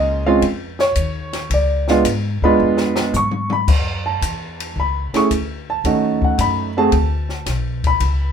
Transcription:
Already playing: C#2 G#3 A#3 C#4 F4 D#5
0.26 G#3 C4 C#4 F4 F5
0.42 F2, kick, ride
0.79 C#5, snare
0.96 D#2, kick, hi-hat pedal, ride
1.33 snare, ride
1.50 C#2 D5, kick, ride
1.88 G#3 B3 D4 F4 F5, snare
2.05 G#2, kick, hi-hat pedal, ride
2.42 G#3 B3 D4 F4 B5, muted upright bass stroke, kick
2.60 F2
2.77 snare
2.96 snare
3.13 G#2 C#6, hi-hat pedal, mid tom
3.31 mid tom
3.50 B5, mid tom
3.68 F#2, kick, crash
4.06 A5
4.21 E2, kick, hi-hat pedal, ride
4.60 ride
4.76 C#2 B5, kick
5.13 A3 C#4 E4 G#4 C#6, muted upright bass stroke, snare, ride
5.30 D2, kick, hi-hat pedal, ride
5.70 A5
5.84 D#2 A3 C#4 D#4 F#4, kick, ride
6.22 F#5, kick
6.38 F#2 B5, kick, hi-hat pedal, ride
6.77 A3 C4 F#4 G#4 A5
6.92 D2, kick, ride
7.29 snare
7.46 B1, kick, snare, hi-hat pedal, ride
7.84 B5, kick, ride
8.00 C#2, kick, ride

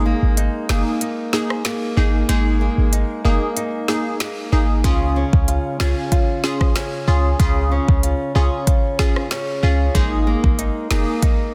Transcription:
Already playing: G#1 G#3 A#3 D#4 G#4
0.06 A#3
0.22 G#1
0.37 D#4, closed hi-hat
0.69 F#1 A#3 D#4 G#4, finger snap, snare
1.01 D#4, closed hi-hat
1.33 A#3 D#4 G#4, snare
1.50 cross-stick
1.65 A#3, finger snap, snare, closed hi-hat
1.97 G#1 A#3 D#4 G#4
2.29 G#1 G#3 A#3 D#4 G#4, closed hi-hat
2.61 A#3
2.78 G#1
2.93 D#4, closed hi-hat
3.25 F#1 A#3 D#4 G#4
3.57 D#4, closed hi-hat
3.88 A#3 D#4 G#4, snare
4.20 A#3, finger snap, snare, closed hi-hat
4.52 G#1 A#3 D#4 G#4
4.84 C#2 C#3 C#4 F4 G#4, kick, closed hi-hat
5.16 C#4
5.33 C#2, kick
5.48 F4, closed hi-hat
5.80 C2 C#4 F4 G#4, finger snap, snare
6.12 F4, kick, closed hi-hat
6.44 C#4 F4 G#4, snare
6.61 kick, cross-stick
6.76 C#4, finger snap, snare, closed hi-hat
7.07 C#2 C#4 F4 G#4
7.39 C#2 C#3 C#4 F4 G#4, kick, closed hi-hat
7.72 C#4
7.88 C#2, kick
8.03 F4, closed hi-hat
8.35 C2 C#4 F4 G#4
8.67 F4, kick, closed hi-hat
8.99 C#4 F4 G#4, kick, snare
9.16 cross-stick
9.31 C#4, finger snap, snare, closed hi-hat
9.63 C#2 C#4 F4 G#4
9.95 G#1 G#3 A#3 D#4 G#4, kick, closed hi-hat
10.27 A#3
10.44 G#1, kick
10.59 D#4, closed hi-hat
10.90 F#1 A#3 D#4 G#4, finger snap, snare
11.22 D#4, kick, closed hi-hat

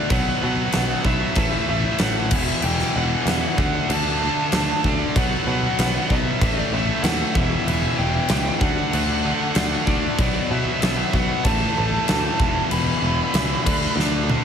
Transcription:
Already playing: D5
0.10 B1 B2 F#3 B3 F#5, kick, crash
0.42 B2 F#3 B3 F#5
0.72 B1 B2 F#3 B3, snare, crash
1.05 B1 B2 F#3 B3 E5, kick
1.35 A1 A2 E3 A3, kick, crash
1.67 A1 A2 E3 A3 E5
1.98 A1 A2 E3 A3 F#5, snare, crash
2.31 E1 E2 B2 E3, kick, crash
2.35 E5
2.62 E1 E2 B2 E3 G5, crash
2.79 snare
2.96 E1 E2 B2 E3 F#5
3.25 E2 B2 E3, snare, crash
3.58 D2 D3 A3 D4 F#5, kick
3.90 D2 D3 A3 D4 A5, crash
4.22 D3 A3 D4
4.52 D2 D3 A3 D4, snare, crash
4.84 D2 D3 A3 D4 D5, kick
5.16 B1 B2 F#3 B3 F#5, kick, crash
5.47 B2 F#3 B3 F#5
5.79 B1 B2 F#3 B3, snare, crash
6.09 B1 B2 F#3 B3 E5, kick
6.41 A1 A2 E3 A3, kick, crash
6.59 D5
6.72 A1 A2 E3 A3 E5
7.03 D#2 A2 E3 A3 F#5, snare, crash
7.35 E1 E2 B2 E3 E5, kick
7.65 E1 E2 E5, crash
7.69 B2 E3
7.97 E1 E2 B2 E3 G5
8.28 C#2 E2 B2 E3, snare, crash
8.60 D2 D3 A3 D4 F#5, kick
8.91 D2 D3 A3 D4 F#5, crash
9.24 D3 A3 D4
9.55 D2 D3 A3 D4, snare, crash
9.86 D2 D3 A3 D4 D5, kick
10.18 B1 B2 F#3 B3, kick, crash
10.50 B2 F#3 B3 E5
10.82 B1 B2 F#3 B3, snare, crash
11.13 B1 B2 F#3 B3 F#5, kick
11.44 A1 A2 E3 A3 A5, kick, crash
11.77 A1 A2 E3 A3
12.07 D2 A2 E3 A3, snare, crash
12.39 E1 E2 B2 E3, kick
12.71 E1 E2 B2 E3 B5, crash
13.02 E1 E2 B2 E3
13.34 C#2 E2 B2 E3, snare, crash
13.66 D2 D3 A3 D4, kick, crash
13.96 D2 D3 A3, snare
14.00 D4
14.30 D3 A3 D4, high tom

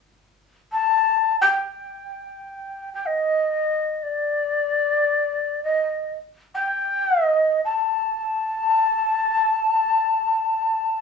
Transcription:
0.72 A5
1.41 G5
2.93 G5
3.06 D#5
4.03 D5
5.63 D#5
6.54 G5
7.25 D#5
7.64 A5

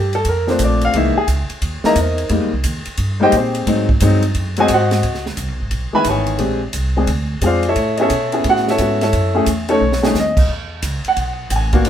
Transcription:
Already playing: G2 G4
0.13 A4, ride
0.25 F2, kick, ride
0.29 A#4
0.47 F3 A3 C4 D4 C5, snare
0.59 A#1, kick, hi-hat pedal, ride
0.64 D5
0.81 F5, ride
0.94 C2 E3 G#3 A#3 D#4 E5, kick, ride
1.18 G#4
1.28 C#2, kick, hi-hat pedal, ride
1.50 muted upright bass stroke, ride
1.62 D#2, kick, ride
1.84 E3 G#3 A#3 D#4 A#4 D#5 E5 A#5, muted upright bass stroke, snare
1.95 E2, kick, hi-hat pedal, ride
2.01 D#4 A#4 C5
2.18 ride
2.29 F2 G3 G#3 A#3 D#4, kick, ride
2.41 D#2
2.53 C2
2.64 D#2, kick, hi-hat pedal, ride
2.86 muted upright bass stroke, ride
2.97 G2, kick, ride
3.20 G3 G#3 A#3 D#4 G4 C5 D#5 G5
3.32 A#2, kick, hi-hat pedal, ride
3.36 C4 G4 C5
3.55 ride
3.67 G#2 F#3 G#3 C4 D#4, kick, ride
3.89 kick
4.00 G2 F#3 G#3 C4 D#4, kick, hi-hat pedal, ride
4.22 ride
4.35 F#2, kick, ride
4.57 F#3 G#3 C4 F#4 G#5, ride
4.61 G#4 C5 D#5
4.68 G#2, kick, hi-hat pedal, ride
4.73 F#4 C5 D#5 F#5
4.91 snare, ride
5.03 C#2, kick, ride
5.14 snare
5.26 snare
5.37 C2, kick, hi-hat pedal, ride
5.48 B1
5.60 G#1
5.71 B1, kick, ride
5.93 D#3 E3 G#3 B3 B4 E5 G#5 B5, muted upright bass stroke
6.04 G#1, kick, hi-hat pedal, ride
6.09 G#4 C#5 E5 G#5
6.27 ride
6.38 A#1 G#3 C4 D4 G4, kick, ride
6.73 C2, kick, hi-hat pedal, ride
6.96 G#3 C4 D4 G#4
7.07 D2, kick, ride
7.41 F2 G#3 C4 D4 G#4, kick, hi-hat pedal, ride
7.46 F4 C5 D5 F5
7.63 ride
7.68 E4 A4 C#5 E5
7.76 A2, kick, ride
7.97 B3 C#4 E4 G#4, ride
8.02 A4 C#5 E5
8.10 B2, kick, hi-hat pedal, ride
8.32 B3 C#4 E4 G#4, ride
8.44 A2, kick, ride
8.49 F#4 F#5
8.56 snare
8.68 E4 A4 C#5 E5, snare
8.78 G#2 B3 C#4 E4 F#4, kick, hi-hat pedal, ride
9.01 E4 A4 C#5 E5, snare, ride
9.13 F#2, kick, ride
9.34 A3 C#4 E4 G#4
9.46 E2, kick, hi-hat pedal, ride
9.69 A3 C#4 D#4 A4 C#5, ride
9.81 B1
9.92 snare
10.03 A3 C#4 D#4 G#4, snare
10.14 D#2, snare, hi-hat pedal
10.19 D#5
10.37 kick, crash
10.49 E2, kick
10.82 C#2, kick, hi-hat pedal, ride
11.04 F#5, muted upright bass stroke, ride
11.17 B1, kick, ride
11.50 A1 G5, kick, hi-hat pedal, ride
11.56 G#5
11.73 A#3 B3 D4 F#4, kick, ride
11.85 G#1 B3 C4 D#4, ride

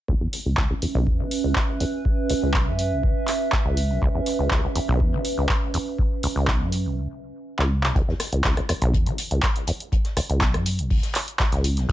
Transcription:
0.08 C#2 C#4, kick
0.21 E2
0.33 E5, open hi-hat
0.46 C#2
0.53 B4
0.57 C#2, kick, clap
0.70 C#2
0.82 E2, open hi-hat
0.95 B1
1.07 E2, kick
1.20 E3
1.31 open hi-hat
1.44 C#2
1.55 kick, clap
1.80 E2, open hi-hat
2.05 kick
2.30 C#2, open hi-hat
2.42 C#2
2.54 B1, kick, clap
2.67 F#2
2.79 open hi-hat
2.92 B1
3.03 C#2, kick
3.28 clap, open hi-hat
3.52 kick, clap
3.65 C#2
3.77 open hi-hat
3.90 B1
4.02 C#2, kick
4.15 E2
4.26 open hi-hat
4.39 C#2
4.51 C#2, kick, clap
4.64 C#2
4.75 E2, open hi-hat
4.88 B1
5.00 E2, kick
5.13 E3
5.25 open hi-hat
5.38 C#2
5.49 kick, clap
5.74 E2, open hi-hat
5.99 kick
6.23 C#2, open hi-hat
6.36 C#2
6.47 B1, kick, clap
6.61 F#2
6.72 open hi-hat
6.85 B1
6.97 C#2
7.59 C#2, clap
7.83 B1, clap
7.95 C#2, kick, closed hi-hat
8.08 E2, snare
8.20 cross-stick, snare, closed hi-hat, open hi-hat
8.33 C#2, closed hi-hat
8.44 C#2, kick, snare, clap, closed hi-hat
8.57 C#2, cross-stick, closed hi-hat
8.69 E2, cross-stick, closed hi-hat, open hi-hat
8.82 B1, closed hi-hat
8.94 E2, kick, closed hi-hat
9.06 E3, closed hi-hat
9.18 closed hi-hat, open hi-hat
9.31 C#2, closed hi-hat
9.43 kick, snare, clap, closed hi-hat
9.56 closed hi-hat
9.67 E2, closed hi-hat, open hi-hat
9.80 closed hi-hat
9.92 kick, closed hi-hat
10.05 snare, closed hi-hat
10.17 C#2, cross-stick, closed hi-hat, open hi-hat
10.29 C#2, closed hi-hat
10.41 B1, kick, snare, clap, closed hi-hat
10.54 F#2, cross-stick, closed hi-hat
10.66 closed hi-hat, open hi-hat
10.79 B1, closed hi-hat
10.90 C#2, kick, open hi-hat
11.03 snare, closed hi-hat
11.15 clap, closed hi-hat, open hi-hat
11.28 closed hi-hat
11.39 kick, snare, clap, closed hi-hat
11.52 C#2, snare, closed hi-hat
11.64 closed hi-hat, open hi-hat
11.77 B1, snare, closed hi-hat
11.89 C#2, kick

